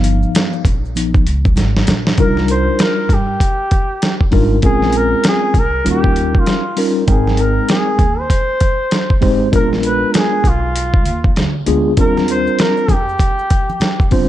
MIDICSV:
0, 0, Header, 1, 5, 480
1, 0, Start_track
1, 0, Key_signature, -3, "minor"
1, 0, Tempo, 612245
1, 1709, Time_signature, 4, 2, 24, 8
1, 11202, End_track
2, 0, Start_track
2, 0, Title_t, "Flugelhorn"
2, 0, Program_c, 0, 56
2, 1732, Note_on_c, 0, 70, 91
2, 1945, Note_off_c, 0, 70, 0
2, 1968, Note_on_c, 0, 72, 91
2, 2212, Note_on_c, 0, 70, 92
2, 2223, Note_off_c, 0, 72, 0
2, 2457, Note_on_c, 0, 67, 81
2, 2469, Note_off_c, 0, 70, 0
2, 3403, Note_off_c, 0, 67, 0
2, 3644, Note_on_c, 0, 68, 84
2, 3892, Note_on_c, 0, 70, 91
2, 3904, Note_off_c, 0, 68, 0
2, 4121, Note_off_c, 0, 70, 0
2, 4140, Note_on_c, 0, 68, 97
2, 4381, Note_on_c, 0, 70, 90
2, 4393, Note_off_c, 0, 68, 0
2, 4605, Note_off_c, 0, 70, 0
2, 4626, Note_on_c, 0, 67, 97
2, 5010, Note_on_c, 0, 65, 80
2, 5022, Note_off_c, 0, 67, 0
2, 5326, Note_off_c, 0, 65, 0
2, 5568, Note_on_c, 0, 68, 73
2, 5803, Note_on_c, 0, 70, 80
2, 5815, Note_off_c, 0, 68, 0
2, 6036, Note_off_c, 0, 70, 0
2, 6041, Note_on_c, 0, 68, 80
2, 6426, Note_on_c, 0, 72, 93
2, 6438, Note_off_c, 0, 68, 0
2, 7233, Note_off_c, 0, 72, 0
2, 7489, Note_on_c, 0, 70, 91
2, 7592, Note_off_c, 0, 70, 0
2, 7726, Note_on_c, 0, 71, 87
2, 7933, Note_on_c, 0, 70, 65
2, 7944, Note_off_c, 0, 71, 0
2, 7974, Note_on_c, 0, 68, 91
2, 7986, Note_off_c, 0, 70, 0
2, 8217, Note_on_c, 0, 65, 81
2, 8229, Note_off_c, 0, 68, 0
2, 8923, Note_off_c, 0, 65, 0
2, 9409, Note_on_c, 0, 70, 86
2, 9623, Note_off_c, 0, 70, 0
2, 9647, Note_on_c, 0, 72, 96
2, 9889, Note_on_c, 0, 70, 94
2, 9900, Note_off_c, 0, 72, 0
2, 10128, Note_on_c, 0, 67, 81
2, 10140, Note_off_c, 0, 70, 0
2, 11079, Note_off_c, 0, 67, 0
2, 11202, End_track
3, 0, Start_track
3, 0, Title_t, "Tine electric piano"
3, 0, Program_c, 1, 4
3, 0, Note_on_c, 1, 53, 55
3, 0, Note_on_c, 1, 59, 56
3, 0, Note_on_c, 1, 63, 65
3, 0, Note_on_c, 1, 77, 107
3, 477, Note_off_c, 1, 53, 0
3, 478, Note_off_c, 1, 59, 0
3, 481, Note_off_c, 1, 63, 0
3, 486, Note_off_c, 1, 77, 0
3, 752, Note_on_c, 1, 53, 48
3, 753, Note_on_c, 1, 59, 43
3, 758, Note_on_c, 1, 63, 53
3, 967, Note_off_c, 1, 53, 0
3, 967, Note_off_c, 1, 59, 0
3, 970, Note_off_c, 1, 63, 0
3, 1711, Note_on_c, 1, 55, 71
3, 1711, Note_on_c, 1, 62, 63
3, 1716, Note_on_c, 1, 63, 64
3, 1718, Note_on_c, 1, 65, 66
3, 1724, Note_on_c, 1, 70, 78
3, 2460, Note_off_c, 1, 55, 0
3, 2460, Note_off_c, 1, 62, 0
3, 2463, Note_off_c, 1, 63, 0
3, 2464, Note_off_c, 1, 65, 0
3, 2467, Note_off_c, 1, 70, 0
3, 3381, Note_on_c, 1, 55, 79
3, 3386, Note_on_c, 1, 62, 78
3, 3388, Note_on_c, 1, 63, 78
3, 3392, Note_on_c, 1, 65, 80
3, 3395, Note_on_c, 1, 70, 88
3, 3584, Note_off_c, 1, 55, 0
3, 3587, Note_off_c, 1, 62, 0
3, 3588, Note_off_c, 1, 63, 0
3, 3589, Note_off_c, 1, 65, 0
3, 3591, Note_off_c, 1, 70, 0
3, 3629, Note_on_c, 1, 56, 74
3, 3631, Note_on_c, 1, 60, 68
3, 3633, Note_on_c, 1, 61, 65
3, 3636, Note_on_c, 1, 65, 62
3, 3640, Note_on_c, 1, 70, 77
3, 4379, Note_off_c, 1, 56, 0
3, 4380, Note_off_c, 1, 60, 0
3, 4381, Note_off_c, 1, 61, 0
3, 4383, Note_off_c, 1, 65, 0
3, 4385, Note_off_c, 1, 70, 0
3, 4584, Note_on_c, 1, 55, 71
3, 4587, Note_on_c, 1, 61, 60
3, 4592, Note_on_c, 1, 63, 61
3, 4594, Note_on_c, 1, 65, 59
3, 4597, Note_on_c, 1, 70, 74
3, 5185, Note_off_c, 1, 55, 0
3, 5187, Note_off_c, 1, 61, 0
3, 5189, Note_off_c, 1, 63, 0
3, 5191, Note_off_c, 1, 65, 0
3, 5192, Note_off_c, 1, 70, 0
3, 5304, Note_on_c, 1, 55, 70
3, 5307, Note_on_c, 1, 61, 65
3, 5312, Note_on_c, 1, 63, 67
3, 5315, Note_on_c, 1, 65, 69
3, 5316, Note_on_c, 1, 70, 83
3, 5505, Note_off_c, 1, 55, 0
3, 5507, Note_off_c, 1, 61, 0
3, 5510, Note_off_c, 1, 63, 0
3, 5511, Note_off_c, 1, 65, 0
3, 5512, Note_off_c, 1, 70, 0
3, 5542, Note_on_c, 1, 56, 72
3, 5545, Note_on_c, 1, 60, 64
3, 5547, Note_on_c, 1, 63, 65
3, 5550, Note_on_c, 1, 79, 63
3, 5555, Note_on_c, 1, 70, 76
3, 6296, Note_off_c, 1, 56, 0
3, 6297, Note_off_c, 1, 60, 0
3, 6298, Note_off_c, 1, 63, 0
3, 6300, Note_off_c, 1, 79, 0
3, 6302, Note_off_c, 1, 70, 0
3, 7221, Note_on_c, 1, 56, 84
3, 7223, Note_on_c, 1, 60, 76
3, 7228, Note_on_c, 1, 67, 80
3, 7229, Note_on_c, 1, 63, 77
3, 7236, Note_on_c, 1, 72, 95
3, 7424, Note_off_c, 1, 56, 0
3, 7425, Note_off_c, 1, 60, 0
3, 7428, Note_off_c, 1, 63, 0
3, 7428, Note_off_c, 1, 67, 0
3, 7432, Note_off_c, 1, 72, 0
3, 7459, Note_on_c, 1, 56, 72
3, 7462, Note_on_c, 1, 59, 65
3, 7465, Note_on_c, 1, 62, 71
3, 7470, Note_on_c, 1, 65, 68
3, 7474, Note_on_c, 1, 70, 76
3, 8214, Note_off_c, 1, 56, 0
3, 8216, Note_off_c, 1, 59, 0
3, 8217, Note_off_c, 1, 62, 0
3, 8220, Note_off_c, 1, 65, 0
3, 8222, Note_off_c, 1, 70, 0
3, 9141, Note_on_c, 1, 56, 80
3, 9144, Note_on_c, 1, 59, 77
3, 9149, Note_on_c, 1, 62, 76
3, 9153, Note_on_c, 1, 65, 74
3, 9153, Note_on_c, 1, 68, 88
3, 9344, Note_off_c, 1, 56, 0
3, 9346, Note_off_c, 1, 59, 0
3, 9348, Note_off_c, 1, 62, 0
3, 9350, Note_off_c, 1, 65, 0
3, 9350, Note_off_c, 1, 68, 0
3, 9384, Note_on_c, 1, 55, 73
3, 9387, Note_on_c, 1, 60, 68
3, 9392, Note_on_c, 1, 62, 66
3, 9394, Note_on_c, 1, 65, 67
3, 9397, Note_on_c, 1, 70, 77
3, 10137, Note_off_c, 1, 55, 0
3, 10138, Note_off_c, 1, 60, 0
3, 10141, Note_off_c, 1, 62, 0
3, 10142, Note_off_c, 1, 65, 0
3, 10143, Note_off_c, 1, 70, 0
3, 11060, Note_on_c, 1, 55, 83
3, 11066, Note_on_c, 1, 60, 76
3, 11067, Note_on_c, 1, 62, 78
3, 11075, Note_on_c, 1, 65, 78
3, 11075, Note_on_c, 1, 72, 91
3, 11202, Note_off_c, 1, 55, 0
3, 11202, Note_off_c, 1, 60, 0
3, 11202, Note_off_c, 1, 62, 0
3, 11202, Note_off_c, 1, 65, 0
3, 11202, Note_off_c, 1, 72, 0
3, 11202, End_track
4, 0, Start_track
4, 0, Title_t, "Upright bass"
4, 0, Program_c, 2, 32
4, 0, Note_on_c, 2, 31, 117
4, 175, Note_off_c, 2, 31, 0
4, 506, Note_on_c, 2, 34, 85
4, 990, Note_off_c, 2, 34, 0
4, 990, Note_on_c, 2, 37, 96
4, 1182, Note_off_c, 2, 37, 0
4, 1230, Note_on_c, 2, 32, 91
4, 1421, Note_off_c, 2, 32, 0
4, 1470, Note_on_c, 2, 34, 98
4, 1662, Note_off_c, 2, 34, 0
4, 1713, Note_on_c, 2, 36, 96
4, 2095, Note_off_c, 2, 36, 0
4, 2427, Note_on_c, 2, 43, 88
4, 2620, Note_off_c, 2, 43, 0
4, 3396, Note_on_c, 2, 32, 88
4, 3585, Note_off_c, 2, 32, 0
4, 3632, Note_on_c, 2, 34, 102
4, 4014, Note_off_c, 2, 34, 0
4, 4345, Note_on_c, 2, 36, 79
4, 4539, Note_off_c, 2, 36, 0
4, 4595, Note_on_c, 2, 39, 104
4, 4976, Note_off_c, 2, 39, 0
4, 5551, Note_on_c, 2, 32, 104
4, 5934, Note_off_c, 2, 32, 0
4, 6265, Note_on_c, 2, 39, 85
4, 6458, Note_off_c, 2, 39, 0
4, 7233, Note_on_c, 2, 32, 85
4, 7423, Note_off_c, 2, 32, 0
4, 7471, Note_on_c, 2, 34, 90
4, 7854, Note_off_c, 2, 34, 0
4, 8186, Note_on_c, 2, 35, 83
4, 8671, Note_off_c, 2, 35, 0
4, 8671, Note_on_c, 2, 39, 80
4, 8862, Note_off_c, 2, 39, 0
4, 8911, Note_on_c, 2, 38, 77
4, 9102, Note_off_c, 2, 38, 0
4, 9149, Note_on_c, 2, 38, 81
4, 9341, Note_off_c, 2, 38, 0
4, 9389, Note_on_c, 2, 39, 94
4, 9773, Note_off_c, 2, 39, 0
4, 10104, Note_on_c, 2, 41, 77
4, 10298, Note_off_c, 2, 41, 0
4, 11071, Note_on_c, 2, 31, 87
4, 11202, Note_off_c, 2, 31, 0
4, 11202, End_track
5, 0, Start_track
5, 0, Title_t, "Drums"
5, 30, Note_on_c, 9, 42, 81
5, 30, Note_on_c, 9, 82, 46
5, 109, Note_off_c, 9, 42, 0
5, 109, Note_off_c, 9, 82, 0
5, 178, Note_on_c, 9, 82, 49
5, 256, Note_off_c, 9, 82, 0
5, 272, Note_on_c, 9, 63, 42
5, 272, Note_on_c, 9, 82, 60
5, 274, Note_on_c, 9, 42, 103
5, 283, Note_on_c, 9, 38, 107
5, 350, Note_off_c, 9, 63, 0
5, 350, Note_off_c, 9, 82, 0
5, 353, Note_off_c, 9, 42, 0
5, 362, Note_off_c, 9, 38, 0
5, 415, Note_on_c, 9, 82, 45
5, 493, Note_off_c, 9, 82, 0
5, 507, Note_on_c, 9, 36, 84
5, 509, Note_on_c, 9, 63, 68
5, 509, Note_on_c, 9, 64, 66
5, 509, Note_on_c, 9, 82, 46
5, 512, Note_on_c, 9, 42, 71
5, 586, Note_off_c, 9, 36, 0
5, 587, Note_off_c, 9, 63, 0
5, 587, Note_off_c, 9, 64, 0
5, 587, Note_off_c, 9, 82, 0
5, 590, Note_off_c, 9, 42, 0
5, 668, Note_on_c, 9, 82, 44
5, 746, Note_off_c, 9, 82, 0
5, 749, Note_on_c, 9, 82, 63
5, 759, Note_on_c, 9, 42, 95
5, 827, Note_off_c, 9, 82, 0
5, 837, Note_off_c, 9, 42, 0
5, 895, Note_on_c, 9, 82, 43
5, 898, Note_on_c, 9, 36, 100
5, 973, Note_off_c, 9, 82, 0
5, 976, Note_off_c, 9, 36, 0
5, 992, Note_on_c, 9, 42, 80
5, 992, Note_on_c, 9, 82, 45
5, 1070, Note_off_c, 9, 82, 0
5, 1071, Note_off_c, 9, 42, 0
5, 1138, Note_on_c, 9, 36, 96
5, 1141, Note_on_c, 9, 63, 66
5, 1141, Note_on_c, 9, 82, 46
5, 1217, Note_off_c, 9, 36, 0
5, 1219, Note_off_c, 9, 63, 0
5, 1219, Note_off_c, 9, 82, 0
5, 1222, Note_on_c, 9, 64, 62
5, 1222, Note_on_c, 9, 82, 62
5, 1230, Note_on_c, 9, 42, 73
5, 1235, Note_on_c, 9, 38, 55
5, 1301, Note_off_c, 9, 64, 0
5, 1301, Note_off_c, 9, 82, 0
5, 1308, Note_off_c, 9, 42, 0
5, 1314, Note_off_c, 9, 38, 0
5, 1383, Note_on_c, 9, 82, 42
5, 1384, Note_on_c, 9, 38, 61
5, 1461, Note_off_c, 9, 82, 0
5, 1463, Note_off_c, 9, 38, 0
5, 1466, Note_on_c, 9, 42, 70
5, 1475, Note_on_c, 9, 38, 85
5, 1482, Note_on_c, 9, 63, 58
5, 1482, Note_on_c, 9, 64, 55
5, 1482, Note_on_c, 9, 82, 39
5, 1545, Note_off_c, 9, 42, 0
5, 1553, Note_off_c, 9, 38, 0
5, 1561, Note_off_c, 9, 63, 0
5, 1561, Note_off_c, 9, 64, 0
5, 1561, Note_off_c, 9, 82, 0
5, 1621, Note_on_c, 9, 38, 82
5, 1638, Note_on_c, 9, 63, 57
5, 1638, Note_on_c, 9, 82, 54
5, 1699, Note_off_c, 9, 38, 0
5, 1706, Note_on_c, 9, 42, 79
5, 1709, Note_on_c, 9, 36, 91
5, 1716, Note_off_c, 9, 63, 0
5, 1716, Note_off_c, 9, 82, 0
5, 1784, Note_off_c, 9, 42, 0
5, 1788, Note_off_c, 9, 36, 0
5, 1859, Note_on_c, 9, 38, 30
5, 1937, Note_off_c, 9, 38, 0
5, 1947, Note_on_c, 9, 42, 71
5, 2025, Note_off_c, 9, 42, 0
5, 2186, Note_on_c, 9, 42, 82
5, 2195, Note_on_c, 9, 38, 109
5, 2264, Note_off_c, 9, 42, 0
5, 2273, Note_off_c, 9, 38, 0
5, 2424, Note_on_c, 9, 36, 73
5, 2429, Note_on_c, 9, 42, 66
5, 2503, Note_off_c, 9, 36, 0
5, 2508, Note_off_c, 9, 42, 0
5, 2668, Note_on_c, 9, 36, 71
5, 2673, Note_on_c, 9, 42, 89
5, 2747, Note_off_c, 9, 36, 0
5, 2751, Note_off_c, 9, 42, 0
5, 2909, Note_on_c, 9, 42, 69
5, 2913, Note_on_c, 9, 36, 80
5, 2987, Note_off_c, 9, 42, 0
5, 2992, Note_off_c, 9, 36, 0
5, 3152, Note_on_c, 9, 42, 70
5, 3158, Note_on_c, 9, 38, 84
5, 3230, Note_off_c, 9, 42, 0
5, 3237, Note_off_c, 9, 38, 0
5, 3298, Note_on_c, 9, 36, 78
5, 3376, Note_off_c, 9, 36, 0
5, 3385, Note_on_c, 9, 46, 48
5, 3394, Note_on_c, 9, 36, 82
5, 3463, Note_off_c, 9, 46, 0
5, 3472, Note_off_c, 9, 36, 0
5, 3625, Note_on_c, 9, 42, 82
5, 3630, Note_on_c, 9, 36, 101
5, 3703, Note_off_c, 9, 42, 0
5, 3708, Note_off_c, 9, 36, 0
5, 3781, Note_on_c, 9, 38, 31
5, 3860, Note_off_c, 9, 38, 0
5, 3861, Note_on_c, 9, 42, 70
5, 3940, Note_off_c, 9, 42, 0
5, 4105, Note_on_c, 9, 42, 92
5, 4114, Note_on_c, 9, 38, 113
5, 4184, Note_off_c, 9, 42, 0
5, 4193, Note_off_c, 9, 38, 0
5, 4344, Note_on_c, 9, 36, 78
5, 4347, Note_on_c, 9, 42, 64
5, 4422, Note_off_c, 9, 36, 0
5, 4426, Note_off_c, 9, 42, 0
5, 4593, Note_on_c, 9, 42, 82
5, 4672, Note_off_c, 9, 42, 0
5, 4736, Note_on_c, 9, 36, 91
5, 4814, Note_off_c, 9, 36, 0
5, 4829, Note_on_c, 9, 42, 71
5, 4907, Note_off_c, 9, 42, 0
5, 4976, Note_on_c, 9, 36, 96
5, 5054, Note_off_c, 9, 36, 0
5, 5068, Note_on_c, 9, 42, 66
5, 5074, Note_on_c, 9, 38, 85
5, 5146, Note_off_c, 9, 42, 0
5, 5153, Note_off_c, 9, 38, 0
5, 5305, Note_on_c, 9, 46, 54
5, 5384, Note_off_c, 9, 46, 0
5, 5548, Note_on_c, 9, 42, 81
5, 5550, Note_on_c, 9, 36, 106
5, 5626, Note_off_c, 9, 42, 0
5, 5628, Note_off_c, 9, 36, 0
5, 5703, Note_on_c, 9, 38, 32
5, 5781, Note_off_c, 9, 38, 0
5, 5781, Note_on_c, 9, 42, 72
5, 5859, Note_off_c, 9, 42, 0
5, 6025, Note_on_c, 9, 42, 85
5, 6034, Note_on_c, 9, 38, 105
5, 6104, Note_off_c, 9, 42, 0
5, 6113, Note_off_c, 9, 38, 0
5, 6262, Note_on_c, 9, 36, 81
5, 6263, Note_on_c, 9, 42, 60
5, 6341, Note_off_c, 9, 36, 0
5, 6341, Note_off_c, 9, 42, 0
5, 6506, Note_on_c, 9, 36, 73
5, 6510, Note_on_c, 9, 42, 91
5, 6585, Note_off_c, 9, 36, 0
5, 6588, Note_off_c, 9, 42, 0
5, 6746, Note_on_c, 9, 42, 72
5, 6750, Note_on_c, 9, 36, 83
5, 6824, Note_off_c, 9, 42, 0
5, 6829, Note_off_c, 9, 36, 0
5, 6988, Note_on_c, 9, 42, 69
5, 6994, Note_on_c, 9, 38, 83
5, 7066, Note_off_c, 9, 42, 0
5, 7073, Note_off_c, 9, 38, 0
5, 7135, Note_on_c, 9, 36, 86
5, 7214, Note_off_c, 9, 36, 0
5, 7227, Note_on_c, 9, 46, 50
5, 7233, Note_on_c, 9, 36, 82
5, 7305, Note_off_c, 9, 46, 0
5, 7312, Note_off_c, 9, 36, 0
5, 7471, Note_on_c, 9, 36, 97
5, 7472, Note_on_c, 9, 42, 80
5, 7549, Note_off_c, 9, 36, 0
5, 7550, Note_off_c, 9, 42, 0
5, 7627, Note_on_c, 9, 38, 31
5, 7705, Note_off_c, 9, 38, 0
5, 7708, Note_on_c, 9, 42, 74
5, 7787, Note_off_c, 9, 42, 0
5, 7950, Note_on_c, 9, 42, 90
5, 7959, Note_on_c, 9, 38, 106
5, 8028, Note_off_c, 9, 42, 0
5, 8037, Note_off_c, 9, 38, 0
5, 8184, Note_on_c, 9, 36, 77
5, 8191, Note_on_c, 9, 42, 62
5, 8263, Note_off_c, 9, 36, 0
5, 8270, Note_off_c, 9, 42, 0
5, 8432, Note_on_c, 9, 42, 87
5, 8511, Note_off_c, 9, 42, 0
5, 8574, Note_on_c, 9, 36, 97
5, 8653, Note_off_c, 9, 36, 0
5, 8667, Note_on_c, 9, 42, 75
5, 8745, Note_off_c, 9, 42, 0
5, 8815, Note_on_c, 9, 36, 96
5, 8893, Note_off_c, 9, 36, 0
5, 8909, Note_on_c, 9, 42, 68
5, 8915, Note_on_c, 9, 38, 89
5, 8987, Note_off_c, 9, 42, 0
5, 8993, Note_off_c, 9, 38, 0
5, 9145, Note_on_c, 9, 42, 68
5, 9223, Note_off_c, 9, 42, 0
5, 9385, Note_on_c, 9, 42, 83
5, 9388, Note_on_c, 9, 36, 107
5, 9396, Note_on_c, 9, 82, 62
5, 9463, Note_off_c, 9, 42, 0
5, 9466, Note_off_c, 9, 36, 0
5, 9474, Note_off_c, 9, 82, 0
5, 9542, Note_on_c, 9, 82, 37
5, 9545, Note_on_c, 9, 38, 31
5, 9620, Note_off_c, 9, 82, 0
5, 9623, Note_off_c, 9, 38, 0
5, 9628, Note_on_c, 9, 42, 78
5, 9631, Note_on_c, 9, 82, 43
5, 9706, Note_off_c, 9, 42, 0
5, 9709, Note_off_c, 9, 82, 0
5, 9776, Note_on_c, 9, 82, 47
5, 9855, Note_off_c, 9, 82, 0
5, 9867, Note_on_c, 9, 42, 84
5, 9869, Note_on_c, 9, 82, 56
5, 9876, Note_on_c, 9, 38, 107
5, 9946, Note_off_c, 9, 42, 0
5, 9948, Note_off_c, 9, 82, 0
5, 9955, Note_off_c, 9, 38, 0
5, 10011, Note_on_c, 9, 82, 44
5, 10090, Note_off_c, 9, 82, 0
5, 10102, Note_on_c, 9, 36, 74
5, 10106, Note_on_c, 9, 63, 64
5, 10106, Note_on_c, 9, 64, 68
5, 10106, Note_on_c, 9, 82, 47
5, 10107, Note_on_c, 9, 42, 59
5, 10180, Note_off_c, 9, 36, 0
5, 10184, Note_off_c, 9, 63, 0
5, 10184, Note_off_c, 9, 64, 0
5, 10184, Note_off_c, 9, 82, 0
5, 10186, Note_off_c, 9, 42, 0
5, 10260, Note_on_c, 9, 82, 44
5, 10338, Note_off_c, 9, 82, 0
5, 10338, Note_on_c, 9, 82, 56
5, 10345, Note_on_c, 9, 36, 73
5, 10350, Note_on_c, 9, 42, 84
5, 10416, Note_off_c, 9, 82, 0
5, 10423, Note_off_c, 9, 36, 0
5, 10428, Note_off_c, 9, 42, 0
5, 10496, Note_on_c, 9, 82, 45
5, 10574, Note_off_c, 9, 82, 0
5, 10584, Note_on_c, 9, 82, 46
5, 10587, Note_on_c, 9, 42, 76
5, 10589, Note_on_c, 9, 36, 81
5, 10663, Note_off_c, 9, 82, 0
5, 10665, Note_off_c, 9, 42, 0
5, 10668, Note_off_c, 9, 36, 0
5, 10737, Note_on_c, 9, 63, 59
5, 10737, Note_on_c, 9, 82, 41
5, 10816, Note_off_c, 9, 63, 0
5, 10816, Note_off_c, 9, 82, 0
5, 10821, Note_on_c, 9, 64, 57
5, 10821, Note_on_c, 9, 82, 56
5, 10826, Note_on_c, 9, 42, 68
5, 10833, Note_on_c, 9, 38, 86
5, 10899, Note_off_c, 9, 64, 0
5, 10899, Note_off_c, 9, 82, 0
5, 10905, Note_off_c, 9, 42, 0
5, 10911, Note_off_c, 9, 38, 0
5, 10974, Note_on_c, 9, 36, 80
5, 10981, Note_on_c, 9, 82, 39
5, 11052, Note_off_c, 9, 36, 0
5, 11059, Note_off_c, 9, 82, 0
5, 11063, Note_on_c, 9, 46, 48
5, 11070, Note_on_c, 9, 36, 82
5, 11071, Note_on_c, 9, 64, 51
5, 11071, Note_on_c, 9, 82, 37
5, 11141, Note_off_c, 9, 46, 0
5, 11149, Note_off_c, 9, 36, 0
5, 11149, Note_off_c, 9, 64, 0
5, 11149, Note_off_c, 9, 82, 0
5, 11202, End_track
0, 0, End_of_file